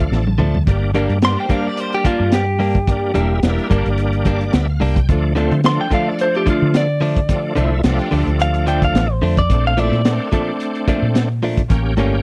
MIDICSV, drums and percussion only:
0, 0, Header, 1, 2, 480
1, 0, Start_track
1, 0, Key_signature, -1, "minor"
1, 0, Tempo, 551471
1, 585, Time_signature, 4, 2, 24, 8
1, 10638, End_track
2, 0, Start_track
2, 0, Title_t, "Drums"
2, 105, Note_on_c, 9, 38, 60
2, 193, Note_off_c, 9, 38, 0
2, 232, Note_on_c, 9, 48, 64
2, 319, Note_off_c, 9, 48, 0
2, 342, Note_on_c, 9, 45, 82
2, 429, Note_off_c, 9, 45, 0
2, 474, Note_on_c, 9, 43, 81
2, 561, Note_off_c, 9, 43, 0
2, 584, Note_on_c, 9, 36, 88
2, 584, Note_on_c, 9, 42, 61
2, 671, Note_off_c, 9, 36, 0
2, 672, Note_off_c, 9, 42, 0
2, 823, Note_on_c, 9, 42, 60
2, 910, Note_off_c, 9, 42, 0
2, 954, Note_on_c, 9, 42, 34
2, 1041, Note_off_c, 9, 42, 0
2, 1061, Note_on_c, 9, 42, 80
2, 1066, Note_on_c, 9, 38, 107
2, 1148, Note_off_c, 9, 42, 0
2, 1153, Note_off_c, 9, 38, 0
2, 1300, Note_on_c, 9, 42, 56
2, 1301, Note_on_c, 9, 36, 65
2, 1387, Note_off_c, 9, 42, 0
2, 1388, Note_off_c, 9, 36, 0
2, 1543, Note_on_c, 9, 42, 78
2, 1630, Note_off_c, 9, 42, 0
2, 1673, Note_on_c, 9, 42, 37
2, 1760, Note_off_c, 9, 42, 0
2, 1782, Note_on_c, 9, 36, 71
2, 1783, Note_on_c, 9, 42, 61
2, 1869, Note_off_c, 9, 36, 0
2, 1870, Note_off_c, 9, 42, 0
2, 2018, Note_on_c, 9, 42, 92
2, 2022, Note_on_c, 9, 38, 113
2, 2105, Note_off_c, 9, 42, 0
2, 2109, Note_off_c, 9, 38, 0
2, 2260, Note_on_c, 9, 46, 70
2, 2347, Note_off_c, 9, 46, 0
2, 2390, Note_on_c, 9, 42, 37
2, 2393, Note_on_c, 9, 36, 71
2, 2478, Note_off_c, 9, 42, 0
2, 2480, Note_off_c, 9, 36, 0
2, 2502, Note_on_c, 9, 36, 93
2, 2502, Note_on_c, 9, 42, 71
2, 2589, Note_off_c, 9, 36, 0
2, 2589, Note_off_c, 9, 42, 0
2, 2742, Note_on_c, 9, 42, 65
2, 2829, Note_off_c, 9, 42, 0
2, 2982, Note_on_c, 9, 42, 88
2, 2987, Note_on_c, 9, 38, 98
2, 3069, Note_off_c, 9, 42, 0
2, 3074, Note_off_c, 9, 38, 0
2, 3119, Note_on_c, 9, 42, 40
2, 3206, Note_off_c, 9, 42, 0
2, 3226, Note_on_c, 9, 42, 63
2, 3227, Note_on_c, 9, 36, 70
2, 3313, Note_off_c, 9, 42, 0
2, 3314, Note_off_c, 9, 36, 0
2, 3357, Note_on_c, 9, 42, 42
2, 3445, Note_off_c, 9, 42, 0
2, 3462, Note_on_c, 9, 42, 76
2, 3549, Note_off_c, 9, 42, 0
2, 3593, Note_on_c, 9, 42, 40
2, 3680, Note_off_c, 9, 42, 0
2, 3700, Note_on_c, 9, 42, 54
2, 3706, Note_on_c, 9, 36, 65
2, 3787, Note_off_c, 9, 42, 0
2, 3793, Note_off_c, 9, 36, 0
2, 3836, Note_on_c, 9, 42, 37
2, 3923, Note_off_c, 9, 42, 0
2, 3943, Note_on_c, 9, 42, 84
2, 3947, Note_on_c, 9, 38, 110
2, 4030, Note_off_c, 9, 42, 0
2, 4034, Note_off_c, 9, 38, 0
2, 4187, Note_on_c, 9, 46, 69
2, 4274, Note_off_c, 9, 46, 0
2, 4319, Note_on_c, 9, 36, 80
2, 4320, Note_on_c, 9, 42, 35
2, 4406, Note_off_c, 9, 36, 0
2, 4407, Note_off_c, 9, 42, 0
2, 4428, Note_on_c, 9, 42, 64
2, 4429, Note_on_c, 9, 36, 98
2, 4515, Note_off_c, 9, 42, 0
2, 4516, Note_off_c, 9, 36, 0
2, 4667, Note_on_c, 9, 42, 55
2, 4671, Note_on_c, 9, 38, 34
2, 4754, Note_off_c, 9, 42, 0
2, 4758, Note_off_c, 9, 38, 0
2, 4801, Note_on_c, 9, 42, 35
2, 4888, Note_off_c, 9, 42, 0
2, 4907, Note_on_c, 9, 42, 76
2, 4911, Note_on_c, 9, 38, 105
2, 4994, Note_off_c, 9, 42, 0
2, 4998, Note_off_c, 9, 38, 0
2, 5146, Note_on_c, 9, 42, 54
2, 5148, Note_on_c, 9, 36, 77
2, 5233, Note_off_c, 9, 42, 0
2, 5235, Note_off_c, 9, 36, 0
2, 5386, Note_on_c, 9, 42, 82
2, 5473, Note_off_c, 9, 42, 0
2, 5523, Note_on_c, 9, 42, 37
2, 5610, Note_off_c, 9, 42, 0
2, 5628, Note_on_c, 9, 36, 64
2, 5630, Note_on_c, 9, 42, 58
2, 5715, Note_off_c, 9, 36, 0
2, 5717, Note_off_c, 9, 42, 0
2, 5866, Note_on_c, 9, 42, 90
2, 5870, Note_on_c, 9, 38, 98
2, 5953, Note_off_c, 9, 42, 0
2, 5958, Note_off_c, 9, 38, 0
2, 6111, Note_on_c, 9, 46, 73
2, 6198, Note_off_c, 9, 46, 0
2, 6237, Note_on_c, 9, 36, 81
2, 6237, Note_on_c, 9, 42, 41
2, 6324, Note_off_c, 9, 36, 0
2, 6324, Note_off_c, 9, 42, 0
2, 6343, Note_on_c, 9, 42, 79
2, 6345, Note_on_c, 9, 36, 87
2, 6431, Note_off_c, 9, 42, 0
2, 6432, Note_off_c, 9, 36, 0
2, 6583, Note_on_c, 9, 42, 65
2, 6670, Note_off_c, 9, 42, 0
2, 6820, Note_on_c, 9, 42, 85
2, 6824, Note_on_c, 9, 38, 118
2, 6907, Note_off_c, 9, 42, 0
2, 6911, Note_off_c, 9, 38, 0
2, 6954, Note_on_c, 9, 42, 39
2, 7041, Note_off_c, 9, 42, 0
2, 7066, Note_on_c, 9, 46, 62
2, 7153, Note_off_c, 9, 46, 0
2, 7196, Note_on_c, 9, 42, 40
2, 7283, Note_off_c, 9, 42, 0
2, 7307, Note_on_c, 9, 42, 85
2, 7394, Note_off_c, 9, 42, 0
2, 7433, Note_on_c, 9, 42, 43
2, 7520, Note_off_c, 9, 42, 0
2, 7546, Note_on_c, 9, 42, 60
2, 7633, Note_off_c, 9, 42, 0
2, 7677, Note_on_c, 9, 36, 72
2, 7679, Note_on_c, 9, 42, 37
2, 7764, Note_off_c, 9, 36, 0
2, 7766, Note_off_c, 9, 42, 0
2, 7791, Note_on_c, 9, 42, 78
2, 7795, Note_on_c, 9, 38, 106
2, 7878, Note_off_c, 9, 42, 0
2, 7882, Note_off_c, 9, 38, 0
2, 8029, Note_on_c, 9, 46, 75
2, 8116, Note_off_c, 9, 46, 0
2, 8158, Note_on_c, 9, 36, 82
2, 8161, Note_on_c, 9, 42, 34
2, 8245, Note_off_c, 9, 36, 0
2, 8248, Note_off_c, 9, 42, 0
2, 8267, Note_on_c, 9, 36, 96
2, 8267, Note_on_c, 9, 42, 67
2, 8354, Note_off_c, 9, 42, 0
2, 8355, Note_off_c, 9, 36, 0
2, 8509, Note_on_c, 9, 42, 57
2, 8596, Note_off_c, 9, 42, 0
2, 8643, Note_on_c, 9, 42, 32
2, 8730, Note_off_c, 9, 42, 0
2, 8746, Note_on_c, 9, 42, 80
2, 8750, Note_on_c, 9, 38, 103
2, 8833, Note_off_c, 9, 42, 0
2, 8837, Note_off_c, 9, 38, 0
2, 8985, Note_on_c, 9, 42, 56
2, 8986, Note_on_c, 9, 36, 72
2, 9072, Note_off_c, 9, 42, 0
2, 9073, Note_off_c, 9, 36, 0
2, 9228, Note_on_c, 9, 42, 73
2, 9315, Note_off_c, 9, 42, 0
2, 9357, Note_on_c, 9, 42, 39
2, 9444, Note_off_c, 9, 42, 0
2, 9466, Note_on_c, 9, 36, 73
2, 9469, Note_on_c, 9, 42, 58
2, 9554, Note_off_c, 9, 36, 0
2, 9556, Note_off_c, 9, 42, 0
2, 9706, Note_on_c, 9, 42, 80
2, 9710, Note_on_c, 9, 38, 104
2, 9793, Note_off_c, 9, 42, 0
2, 9797, Note_off_c, 9, 38, 0
2, 9944, Note_on_c, 9, 46, 74
2, 10031, Note_off_c, 9, 46, 0
2, 10072, Note_on_c, 9, 42, 37
2, 10075, Note_on_c, 9, 36, 76
2, 10159, Note_off_c, 9, 42, 0
2, 10162, Note_off_c, 9, 36, 0
2, 10183, Note_on_c, 9, 42, 71
2, 10184, Note_on_c, 9, 36, 92
2, 10270, Note_off_c, 9, 42, 0
2, 10271, Note_off_c, 9, 36, 0
2, 10421, Note_on_c, 9, 42, 63
2, 10508, Note_off_c, 9, 42, 0
2, 10638, End_track
0, 0, End_of_file